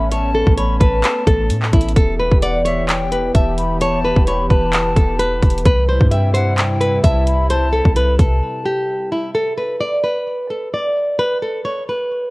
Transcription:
0.00 0.44 A1 loud
0.00 1.92 A3 medium
0.00 1.92 B3 medium
0.00 1.93 C#4 loud
0.00 0.11 B5 medium
0.12 0.30 C#5 loud
0.12 0.55 A5 loud
0.12 closed hi-hat medium
0.35 0.53 A4 medium
0.47 0.80 A1 loud
0.47 kick medium
0.58 0.76 C#5 medium
0.58 0.80 B5 medium
0.58 closed hi-hat medium
0.80 1.03 A1 loud
0.80 1.24 B4 medium
0.80 1.46 A5 medium
0.80 kick loud
0.80 closed hi-hat medium
1.04 clap loud
1.04 closed hi-hat medium
1.27 1.52 A1 loud
1.27 1.70 A4 medium
1.27 kick loud
1.27 closed hi-hat medium
1.50 1.72 A2 loud
1.50 closed hi-hat medium
1.62 clap medium
1.73 1.95 A1 loud
1.73 1.91 E4 medium
1.73 kick medium
1.73 closed hi-hat medium
1.73 open hi-hat medium
1.81 closed hi-hat medium
1.89 closed hi-hat medium
1.96 2.30 E1 loud
1.96 5.62 E3 medium
1.96 5.62 B3 medium
1.96 5.62 G4 medium
1.96 2.14 A4 loud
1.96 kick loud
1.96 closed hi-hat medium
2.19 2.37 B4 medium
2.31 3.31 E1 loud
2.31 kick medium
2.42 2.60 D5 medium
2.42 2.64 F#5 medium
2.42 closed hi-hat medium
2.65 3.09 C#5 medium
2.65 2.87 E5 medium
2.65 closed hi-hat medium
2.89 3.32 G5 medium
2.89 clap loud
2.89 closed hi-hat medium
3.12 3.29 B4 medium
3.12 closed hi-hat medium
3.35 4.13 E1 loud
3.35 3.78 E5 medium
3.35 3.57 A5 medium
3.35 kick loud
3.35 closed hi-hat medium
3.58 3.80 B5 medium
3.58 closed hi-hat medium
3.81 3.99 C#5 loud
3.81 4.24 A5 loud
3.81 closed hi-hat medium
4.04 4.22 B4 medium
4.16 4.49 E1 loud
4.16 kick medium
4.27 4.45 C#5 medium
4.27 4.49 B5 loud
4.27 closed hi-hat medium
4.50 4.94 E1 loud
4.50 4.93 B4 medium
4.50 5.61 A5 medium
4.50 kick loud
4.50 closed hi-hat medium
4.73 clap loud
4.73 closed hi-hat medium
4.96 5.41 E1 loud
4.96 5.14 A4 medium
4.96 kick loud
4.96 closed hi-hat medium
5.19 5.63 B4 medium
5.19 closed hi-hat medium
5.42 5.65 E1 loud
5.42 kick medium
5.42 closed hi-hat medium
5.50 closed hi-hat medium
5.58 closed hi-hat medium
5.66 5.99 C2 loud
5.66 9.31 C3 medium
5.66 9.31 G3 medium
5.66 9.31 E4 medium
5.66 5.84 B4 medium
5.66 kick loud
5.66 closed hi-hat medium
5.89 6.06 C5 medium
6.01 7.00 G2 loud
6.01 kick medium
6.11 6.29 E5 medium
6.11 6.34 G5 medium
6.11 closed hi-hat medium
6.34 6.78 C5 medium
6.34 6.57 F#5 medium
6.34 closed hi-hat medium
6.58 7.01 G5 medium
6.58 clap loud
6.58 closed hi-hat medium
6.81 6.99 B4 medium
6.81 closed hi-hat medium
7.04 7.82 C2 loud
7.04 7.47 E5 medium
7.04 7.26 A5 medium
7.04 kick medium
7.04 closed hi-hat medium
7.27 7.49 B5 medium
7.27 closed hi-hat medium
7.50 7.68 C5 medium
7.50 7.94 A5 loud
7.50 closed hi-hat medium
7.73 7.91 A4 medium
7.85 8.18 C2 loud
7.85 kick medium
7.96 8.14 B4 medium
7.96 8.18 B5 medium
7.96 closed hi-hat medium
8.19 8.42 C2 loud
8.19 8.63 A4 medium
8.19 8.85 A5 medium
8.19 kick loud
8.19 closed hi-hat medium
8.65 9.09 G4 medium
9.12 9.30 E4 medium
9.35 9.53 A4 loud
9.58 9.76 B4 medium
9.81 9.99 D5 medium
10.04 10.47 B4 medium
10.50 10.68 A4 medium
10.74 11.17 D5 medium
11.19 11.37 B4 loud
11.42 11.60 A4 medium
11.65 11.83 C#5 medium
11.89 12.30 B4 medium

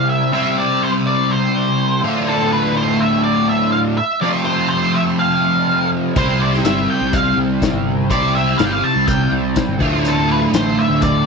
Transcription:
0.00 0.31 C3 medium
0.00 0.32 G3 medium
0.00 0.33 C4 medium
0.00 0.33 E4 medium
0.00 0.33 G4 loud
0.00 0.33 C5 loud
0.09 0.32 E5 loud
0.32 2.02 C3 medium
0.32 2.02 G3 medium
0.32 2.02 C4 medium
0.32 2.02 E4 medium
0.32 2.03 G4 loud
0.32 2.03 C5 loud
0.32 0.58 E5 loud
0.58 0.83 D5 medium
0.83 0.89 C5 medium
1.07 1.32 D5 medium
1.32 2.00 C5 medium
2.02 3.96 D2 medium
2.02 3.96 A2 medium
2.02 3.97 D3 medium
2.02 3.97 A3 medium
2.02 3.97 F4 medium
2.29 2.52 A4 medium
2.53 2.75 B4 medium
2.77 3.02 C5 medium
3.00 3.23 E5 medium
3.24 3.49 D5 medium
3.49 3.72 E5 medium
3.72 3.79 F5 loud
3.98 4.21 E5 loud
4.21 6.15 F2 medium
4.21 6.15 C3 medium
4.21 6.15 F3 loud
4.21 6.16 A3 medium
4.21 6.17 C4 loud
4.21 6.16 F4 loud
4.21 4.28 D5 medium
4.45 4.68 C5 medium
4.70 4.95 C5 medium
4.94 5.01 E5 medium
5.19 5.88 F5 medium
6.16 6.59 C2 loud
6.16 8.08 C3 medium
6.16 8.09 G3 medium
6.16 8.09 C4 loud
6.16 8.10 E4 medium
6.16 8.10 G4 medium
6.16 6.42 C5 medium
6.16 8.11 C5 loud
6.16 kick loud
6.16 closed hi-hat medium
6.42 6.48 D5 medium
6.54 snare soft
6.64 6.86 G1 medium
6.64 6.88 E5 medium
6.64 snare loud
6.64 closed hi-hat medium
6.90 7.15 G5 loud
7.01 7.34 C2 medium
7.13 7.36 F5 medium
7.13 kick loud
7.13 closed hi-hat medium
7.37 7.59 C2 medium
7.62 kick medium
7.62 snare loud
7.62 closed hi-hat medium
7.74 8.12 G1 loud
8.10 8.53 C2 loud
8.10 9.79 C3 medium
8.10 9.79 G3 medium
8.10 9.80 C4 medium
8.10 9.80 E4 medium
8.10 9.80 G4 loud
8.10 9.81 C5 medium
8.10 8.35 D5 medium
8.10 kick loud
8.10 closed hi-hat medium
8.35 8.58 E5 medium
8.58 8.81 G1 medium
8.58 8.65 F5 medium
8.58 snare loud
8.58 closed hi-hat medium
8.65 8.71 G5 medium
8.71 8.84 F5 medium
8.84 9.06 A5 loud
8.96 9.28 C2 medium
9.08 9.31 G5 medium
9.08 kick loud
9.08 closed hi-hat medium
9.32 9.54 C2 loud
9.56 kick medium
9.56 snare loud
9.56 closed hi-hat medium
9.69 9.80 G1 medium
9.79 11.26 D2 loud
9.79 10.45 D2 loud
9.79 11.26 A2 medium
9.79 11.26 D3 medium
9.79 11.26 A3 medium
9.79 11.26 F4 loud
9.79 kick loud
9.79 snare soft
10.05 10.31 A4 medium
10.05 closed hi-hat medium
10.31 10.38 B4 medium
10.54 10.75 A1 medium
10.54 10.80 C5 loud
10.54 snare loud
10.54 closed hi-hat medium
10.79 11.02 E5 loud
10.90 11.22 D2 medium
11.02 11.26 D5 loud
11.02 kick loud
11.02 closed hi-hat medium

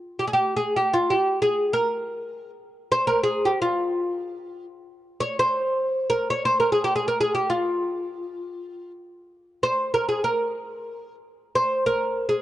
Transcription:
0.19 0.26 G4 medium
0.27 0.33 G#4 medium
0.33 0.55 G4 medium
0.57 0.76 G#4 medium
0.76 0.95 G4 medium
0.94 1.12 F4 medium
1.10 1.42 G4 medium
1.42 1.73 G#4 medium
1.73 2.50 A#4 medium
2.92 3.07 C5 medium
3.07 3.23 A#4 medium
3.23 3.47 G#4 medium
3.45 3.61 G4 medium
3.62 4.64 F4 medium
5.20 5.39 C#5 medium
5.39 6.09 C5 medium
6.10 6.30 A#4 medium
6.30 6.45 C#5 medium
6.45 6.59 C5 medium
6.60 6.72 A#4 medium
6.72 6.84 G#4 medium
6.84 6.95 G4 medium
6.96 7.07 G#4 medium
7.08 7.20 A#4 medium
7.21 7.33 G#4 medium
7.35 7.48 G4 medium
7.50 8.91 F4 medium
9.63 9.94 C5 medium
9.94 10.08 A#4 medium
10.09 10.22 G#4 medium
10.24 11.14 A#4 medium
11.55 11.84 C5 medium
11.86 12.29 A#4 medium
12.29 12.42 G#4 medium

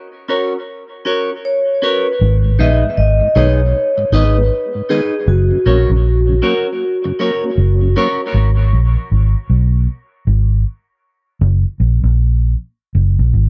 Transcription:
0.28 0.52 C#4 medium
0.28 0.53 F#4 medium
0.28 0.53 A#4 medium
0.28 0.53 C#5 medium
1.05 1.29 C#4 medium
1.05 1.29 F#4 medium
1.05 1.30 A#4 medium
1.05 1.30 C#5 medium
1.45 1.84 C#5 medium
1.82 2.06 C#4 medium
1.82 2.06 F#4 medium
1.82 2.06 A#4 medium
1.82 2.62 B4 medium
1.82 2.07 C#5 medium
2.21 2.57 G#1 loud
2.44 2.52 G#2 medium
2.59 2.82 A#1 medium
2.59 2.71 D#3 medium
2.59 2.71 G#3 medium
2.59 2.71 B3 medium
2.59 2.82 D#4 medium
2.59 2.83 G#4 medium
2.59 2.83 B4 medium
2.59 2.83 D#5 medium
2.59 2.99 E5 medium
2.84 2.90 G#2 medium
2.97 3.20 G#1 medium
2.97 3.37 D#5 loud
3.21 3.28 G#2 medium
3.35 3.72 B1 medium
3.35 3.47 D#3 medium
3.35 3.47 G#3 medium
3.35 3.48 B3 medium
3.35 3.59 D#4 medium
3.35 3.59 G#4 medium
3.35 3.60 B4 medium
3.35 4.09 C#5 loud
3.35 3.60 D#5 medium
3.97 4.05 G#2 medium
3.97 muted clean electric guitar stroke soft
4.12 4.49 G#1 medium
4.12 4.24 D#3 medium
4.12 4.24 G#3 medium
4.12 4.24 B3 medium
4.12 4.36 D#4 medium
4.12 4.37 G#4 medium
4.12 4.37 B4 medium
4.12 4.93 B4 loud
4.12 4.37 D#5 medium
4.37 4.44 G#3 medium
4.37 4.44 B3 medium
4.75 4.82 G#2 medium
4.89 5.01 D#3 medium
4.89 5.01 G#3 medium
4.89 5.01 B3 medium
4.89 5.13 D#4 medium
4.89 5.13 G#4 medium
4.89 5.29 G#4 medium
4.89 5.14 B4 medium
4.89 5.14 D#5 medium
5.28 5.50 F#1 loud
5.28 7.92 F#4 medium
5.51 5.58 F#2 medium
5.51 5.58 C#3 medium
5.66 5.88 A#1 medium
5.66 5.77 F#3 medium
5.66 5.78 A#3 medium
5.66 5.89 C#4 medium
5.66 5.78 C#4 medium
5.66 5.90 F#4 medium
5.66 5.90 A#4 medium
5.66 5.90 C#5 medium
5.90 6.40 A#1 medium
5.90 5.97 F#2 medium
5.90 5.97 C#3 medium
6.28 6.35 F#2 medium
6.28 6.35 C#3 medium
6.42 6.54 F#3 medium
6.42 6.55 A#3 medium
6.42 6.66 C#4 medium
6.42 6.54 C#4 medium
6.42 6.66 F#4 medium
6.42 6.66 A#4 medium
6.42 6.67 C#5 medium
7.04 7.12 F#2 medium
7.04 7.12 C#3 medium
7.04 muted clean electric guitar stroke medium
7.19 7.31 F#3 medium
7.19 7.31 A#3 medium
7.19 7.43 C#4 medium
7.19 7.31 C#4 medium
7.19 7.43 F#4 medium
7.19 7.44 A#4 medium
7.19 7.44 C#5 medium
7.44 7.51 A#3 medium
7.44 7.51 C#4 medium
7.58 7.94 F#1 medium
7.81 7.89 F#2 medium
7.81 7.89 C#3 medium
7.96 8.08 F#3 medium
7.96 8.08 A#3 medium
7.96 8.20 C#4 medium
7.96 8.08 C#4 medium
7.96 8.20 F#4 medium
7.96 8.20 A#4 loud
7.96 8.20 C#5 loud
8.34 8.71 G#1 loud
8.73 8.95 A#1 medium
9.12 9.34 G#1 medium
9.50 9.86 B1 medium
10.27 10.63 G#1 medium
11.41 11.63 F#1 loud
11.80 12.02 A#1 medium
12.03 12.54 A#1 medium
12.95 13.17 F#1 medium
13.19 13.33 A#1 medium
13.34 13.49 G#1 medium

